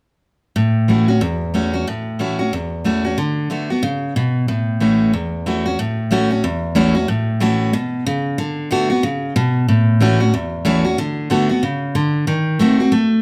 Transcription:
steel-string acoustic guitar
0.56 A2
0.88 E3 A3 C#4 F#4
1.08 C#4 F#4
1.21 E2
1.54 E3 A3 C#4 F#4
1.73 C#4 F#4
1.87 A2
2.19 E3 A3 C#4 F#4
2.39 C#4 F#4
2.53 E2
2.84 E3 A3 C#4 F#4
3.05 C#4 F#4
3.18 D3
3.50 D3 A3 B3 F#4
3.70 B3 F#4
3.83 C#3
4.16 B2
4.48 A2
4.80 E3 A3 C#4 F#4
5.13 E2
5.46 E3 A3 C#4 F#4
5.66 C#4 F#4
5.79 A2
6.11 E3 A3 C#4 F#4
6.30 C#4 F#4
6.44 E2
6.75 E3 A3 C#4 F#4
6.95 C#4 F#4
7.08 A2
7.40 E3 A3 C#4 F#4
7.73 B2
8.06 C#3
8.38 D3
8.71 D3 A3 B3 F#4
8.90 B3 F#4
9.03 C#3
9.36 B2
9.68 A2
10.00 E3 A3 C#4 F#4
10.20 C#4 F#4
10.34 E2
10.65 E3 A3 C#4 F#4
10.85 C#4 F#4
10.98 D3
11.30 D3 A3 B3 F#4
11.49 B3 F#4
11.63 C#3
11.95 D3
12.27 D#3
12.59 D#3 A3 C4 F#4
12.80 C4 F#4
12.92 A3

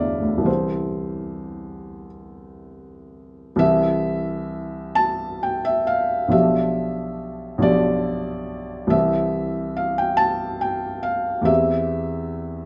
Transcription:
felt piano
Already playing: G1 D2 E2 D3 D5 E5 F5
0.20 D2
0.37 C2
0.43 E3 C4 G4 C5
3.56 C2 E3 C4 G4 E5
4.95 A5
5.43 G5
5.65 E5
5.87 F5
6.28 B1 F3 D4 E5
6.32 G4
7.58 B1 F3 D4
7.62 G4 D5
8.87 C2 E3 C4 G4 E5
9.77 F5
9.98 G5
10.17 A5
10.61 G5
11.03 F5
11.41 E2 E3 C4 E5
11.46 G4

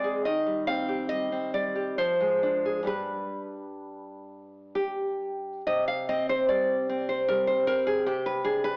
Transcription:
nylon-string guitar
Already playing: G#3 C4 D5
0.04 G#4
0.25 D#3 D#5
0.46 G3
0.67 C4 F5
0.88 G4
1.09 G3 D#5
1.32 C4
1.54 G3 D5
1.75 G4
1.98 F3 C5
2.21 G#3
2.43 D4
2.66 G#4
2.83 G2 G3 D4
2.87 B4
4.75 G4
5.67 C3 D#5
5.87 F5
6.09 C4 D#5
6.29 C5
6.49 G3 D5
6.89 C4
7.09 C5
7.28 G3 A#4
7.47 C5
7.67 C4 A#4
7.87 G#4
8.06 C3 G4
8.26 B4
8.44 D4 G#4
8.64 B4

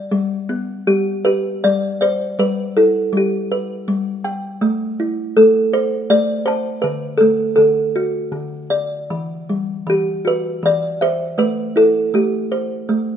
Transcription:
kalimba
Already playing: G3 G4 D5
0.11 G3
0.49 B3
0.87 G3 G4
1.25 G4 B4
1.64 G3 D5
2.01 C5 D5
2.39 G3 B4
2.77 E4 A4
3.13 G3
3.17 G4
3.52 B4
3.88 G3
4.24 G5
4.61 A3
5.00 E4
5.37 A3 A4
5.73 C5
6.10 A3 D5
6.46 C5 A5
6.82 D3 B4
7.17 A3 A4
7.56 D3 A4
7.96 F#4
8.32 D3
8.70 D5
9.10 E3
9.49 G3
9.87 E3 G4
10.25 F#4 B4
10.63 E3 D5
11.01 C5 E5
11.38 A3 B4
11.76 E4 A4
12.14 A3 G4
12.52 C5
12.89 A3

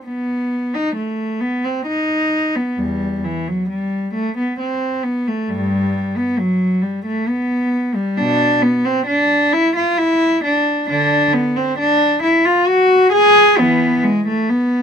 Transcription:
cello
0.06 B3
0.74 D#4
0.96 A3
1.41 B3
1.65 C4
1.87 D#4
2.56 B3
2.78 E2 G3
3.24 E3
3.48 F#3
3.69 G3
4.14 A3
4.37 B3
4.59 C4
5.04 B3
5.28 A3
5.49 G2 G3
6.17 B3
6.38 F#3
6.82 G3
7.05 A3
7.28 B3
7.95 G3
8.17 B2 D4
8.62 B3
8.85 C4
9.06 D4
9.53 E4
9.76 F4
9.98 E4
10.44 D4
10.89 D3 D4
11.34 B3
11.56 C4
11.78 D4
12.23 E4
12.45 F4
12.67 F#4
13.12 G#4
13.58 E3 B3
14.04 G#3
14.27 A3
14.49 B3

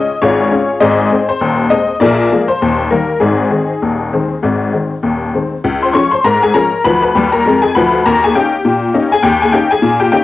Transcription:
honky-tonk piano
Already playing: D#5
0.22 G#1 G#2 F4 G#4 C#5
0.52 G#3 C#4
0.80 G#1 G#2 G#4 C5 D#5
1.12 G#3 C4
1.29 C5
1.41 D#1 D#2
1.70 G#3 C4 D#5
2.00 A#1 A#2 G#4 A#4 D5
2.32 F3 G#3 A#3
2.48 C5
2.61 D#1 D#2
2.91 D#3 G3 A#3 A#4
3.20 G#1 G#2 C4 D#4 G#4
3.50 D#3 G#3 C4
3.82 D#1 D#2
4.13 D#3 G#3 C4
4.43 G#1 G#2
4.73 D#3 G#3 C4
5.03 D#1 D#2
5.34 D#3 G#3 C4
5.64 C#2
5.82 C5 C6
5.93 F3 G#3 C#4 C#5 C#6
6.11 C5 C6
6.24 G#2 A#4 A#5
6.43 G#4 G#5
6.54 F3 G#3 C#4 A#4 A#5
6.84 D2 F3 B4 B5
7.02 B4 B5
7.15 D#2 G3
7.32 A#4 A#5
7.46 F2 G#3
7.62 G#4 G#5
7.75 D2 F3 B4 B5
8.06 D#2 A#4 A#5
8.24 G#4 G#5
8.35 A#3 C#4 D#4 G4 G5
8.65 A#2
8.94 A#3 C#4 D#4
9.12 G#4 G#5
9.23 D#2 G4 G5
9.42 G#4 G#5
9.52 A#3 C#4 D#4 G4 G5
9.71 G#4 G#5
9.82 A#2
10.00 G4 G5
10.12 A#3 C#4 D#4 G4 G5

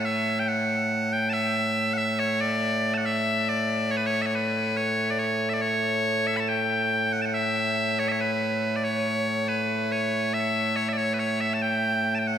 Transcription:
bagpipes
Already playing: A2 A3
0.05 E5
0.39 G5
0.48 F#5
1.13 G5
1.29 E5 A5
1.94 F#5
1.98 E5
2.19 C#5
2.41 D5
2.94 F#5 A5
3.06 E5
3.49 D5
3.91 C#5
3.97 B4
4.06 C#5
4.22 E5
4.26 C#5
4.35 B4
4.77 C#5
5.11 D5
5.19 C#5
5.49 E5
5.53 D5
5.62 C#5
6.27 E5
6.37 A5 B5
6.48 G5
7.13 F#5
7.22 F#5 A5
7.34 E5
7.99 C#5
8.08 C#5 E5
8.20 B4
8.76 D5
8.84 C#5
9.48 B4
9.92 C#5
10.34 E5
10.76 C#5
10.89 D5 E5
10.98 C#5
11.14 B4
11.19 C#5
11.41 E5
11.54 A5
11.62 G5
12.15 G5 A5
12.27 F#5

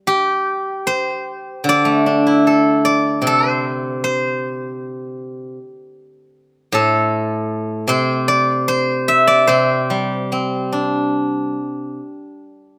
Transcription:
guzheng
0.07 G4
0.87 C5
1.64 D3
1.69 D5
1.85 A3
2.06 D4
2.27 E4
2.47 A4
2.85 D5
3.22 C3
3.27 A4
3.50 C5
4.04 C5
6.72 A2 A4
7.88 C3 C5
8.28 D5
8.68 C5
9.08 E5
9.27 D5
9.47 C3 C5
9.90 G3
10.32 C4
10.73 D4

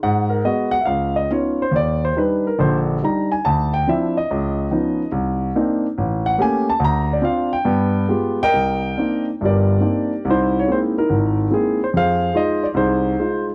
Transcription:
grand piano
0.03 G#2 F#5
0.30 A#4
0.45 G#3 B3 F#4 D#5
0.71 F#5
0.81 E5
0.85 C#2 F5
1.16 D#5
1.31 B3 C#4 D#4 F4 C#5
1.62 C5
1.71 D#2
1.76 D5
2.05 C5
2.17 G3 D4 D#4 B4
2.47 A#4
2.59 A#1 D3 C5
3.02 G3 D4 D#4 A#5
3.32 G#5
3.45 D2 A5
3.74 G5
3.88 F3 C4 D4 E4 E5
4.17 D#5
4.31 C#2
4.71 F3 B3 C#4 D#4
5.12 C2
5.56 A#3 C4 D4 D#4
5.98 A1
6.26 F#5
6.38 A3 A#3 C#4 G4 G#5
6.70 A5
6.80 D2
6.84 A#5
7.13 D5
7.22 C4 D4 F4 F5
7.53 G5
7.65 G2 B3
8.09 G#3 B3 F4 G4
8.43 A#4 D#5 G5
8.53 C2
8.98 A#3 C4 D4 D#4
9.41 G1 G2 G4 A#4
9.45 D5
9.81 A#3 C4 D4 D#4
10.25 C2
10.29 D#4 E4 C5
10.60 C#5
10.67 G#3 A#3 C4 E4
10.72 C5
10.98 D#4 E4 A#4
11.10 G#1
11.50 G#3 A#3 C4 E4 G#4
11.84 C5
11.94 F2 G#4 C5 F5
12.34 G#3 D#4 F4 D#5
12.63 D5
12.74 C2 D#4 G#4 C5
13.20 G#3 D#4 F4

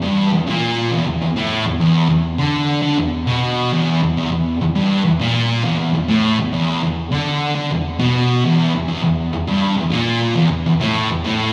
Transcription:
distorted electric guitar
0.02 G2
0.33 E2
0.47 A#2
0.92 E2
1.07 E2
1.22 E2
1.36 A2
1.65 E2
1.80 E2
2.09 E2
2.38 D3
2.82 D3
2.98 E2
3.27 B2
3.72 E2
4.03 E2
4.17 E2
4.32 E2
4.61 E2
4.75 G2
5.05 E2
5.20 A#2
5.64 E2
5.79 E2
5.95 E2
6.09 A2
6.40 E2
6.53 E2
6.83 E2
7.12 D3
7.55 D3
7.71 E2
7.99 B2
8.45 E2
8.75 E2
8.89 E2
9.03 E2
9.33 E2
9.48 G2
9.77 E2
9.91 A#2
10.35 E2
10.51 E2
10.66 E2
10.80 A2
11.09 E2
11.24 A2

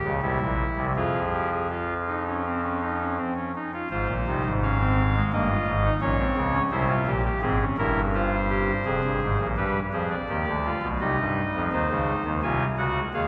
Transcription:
pipe organ
Already playing: G4
0.04 C#2 C#3
0.22 C2 C3 E4
0.40 A#1 A#2
0.76 C2 C3
0.96 F2 F3 F4 G#4
1.33 G4
1.52 G#4
1.70 F4
2.07 D#4
2.27 C#4
2.45 C4
2.64 C#4
2.81 D#4
3.00 C#4
3.17 C4
3.36 C#4
3.56 D#4
3.73 F4
3.90 G#1 G#2 F4 C5
4.08 A#1 A#2
4.27 C2 C3 D#4
4.45 G#1 G#2
4.62 C#4 F5
4.80 C4
5.16 G#3
5.32 G1 G2 A#3 D#5
5.50 F4
5.67 G#1 G#2
5.84 D#4
6.01 A#1 A#2 C#4 C#5
6.19 C4
6.37 C#2 C#3
6.54 C#4
6.71 C2 C3 E4 C5
6.88 F4
7.06 A#1 A#2 G4
7.25 G4
7.42 G#1 G#2 C4 G#4
7.61 C#4
7.78 G1 G2 E4 A#4
8.14 F4 C5
8.50 G4
8.85 F1 F2 G#4
9.04 G1 G2
9.22 G#1 G#2
9.39 A#1 A#2
9.57 G2 G3 G4 B4
9.93 F2 F3 G#4 C5
10.10 D5
10.29 D#2 D#3 G4
10.48 D2 D3
10.65 F4
10.82 B1 B2
11.00 C2 C3 D#4 D#5
11.19 G2 G3
11.54 F2 F3
11.72 D#2 D#3 C5
11.90 C#2 C#3
12.25 D#2 D#3
12.43 C2 C3 F4 G#5
12.78 C#2 C#3 F#4 F#5
13.13 D#2 D#3 G#4 F5

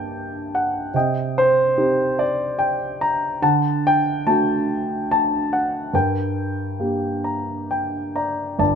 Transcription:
grand piano
Already playing: G2 A#3 D4 G4 D5 G5 A5
0.55 F#5
0.94 C3 D#5 G5
1.38 C5
1.78 C4 D#4 G4
2.19 D5
2.59 G5
3.01 A#5
3.42 D3 F#5 A5
3.87 G5
4.26 A3 D4 F#4 A5
5.11 A5
5.53 F#5
5.93 G2 A#4 G5
6.80 A#3 D4 G4
7.24 A#5
7.71 G5
8.16 D5 A#5
8.59 G1 G2 D5 A5

